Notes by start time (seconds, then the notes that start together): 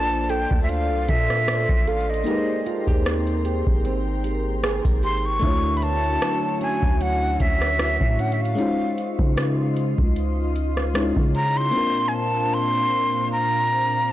Already playing: A#1 A#3 D4 F4 A4 C5 D5 A5 C6
0.29 A4 G5, closed hi-hat
0.51 D2, kick
0.63 E5
0.69 D4 F5, closed hi-hat
0.90 C2
1.08 A#2 A4 E5, kick, closed hi-hat
1.30 cross-stick
1.48 C5, cross-stick, closed hi-hat
1.69 A1, kick
1.87 A4 F5, closed hi-hat
2.00 closed hi-hat
2.10 D#5
2.14 closed hi-hat
2.24 G#3 A#3 D#4 G4 A#4 G5, closed hi-hat
2.29 G#4 B4
2.37 C5
2.66 F4, closed hi-hat
2.87 D#2 G4, kick
3.06 C4, cross-stick, closed hi-hat
3.27 closed hi-hat
3.45 G4, closed hi-hat
3.67 G#1, kick
3.85 C4, closed hi-hat
4.24 G4, closed hi-hat
4.63 G#4, cross-stick, closed hi-hat
4.85 G#1 A#4, kick
5.03 G4 C6, closed hi-hat
5.18 C6
5.26 C#6
5.39 D2 D3 A3 D4 E4 F#4 E5 C#6, kick, closed hi-hat
5.45 F4 C#5
5.51 F#4
5.77 B5
5.82 B3 A5, closed hi-hat
6.03 C#4
6.21 F#3, cross-stick, closed hi-hat
6.61 C#4 G#5, closed hi-hat
6.83 D2, kick
7.01 F#3 F#5, closed hi-hat
7.40 D2 C#4 E5, kick, closed hi-hat
7.62 cross-stick
7.79 E4, cross-stick, closed hi-hat
8.01 A2, kick
8.19 C#4 F#5, closed hi-hat
8.32 E5, closed hi-hat
8.41 F5, closed hi-hat
8.55 G#3 C#4 D#4 F4 D#5 C6, closed hi-hat
8.60 F4 C5
8.98 closed hi-hat
9.19 C#3, kick
9.37 cross-stick, closed hi-hat
9.77 closed hi-hat
9.98 C#2, kick
10.16 closed hi-hat
10.56 closed hi-hat
10.77 cross-stick
10.94 G#3 C#4 D#4 E4 C#5, cross-stick, closed hi-hat
11.03 F4
11.16 C#3, kick
11.35 A#5, closed hi-hat
11.48 closed hi-hat
11.57 C6, closed hi-hat
11.71 A#2 A#3 C4 D4 C5 F5
11.76 F4 A#4
12.08 G#5
12.15 A5
12.54 C6
13.32 A#5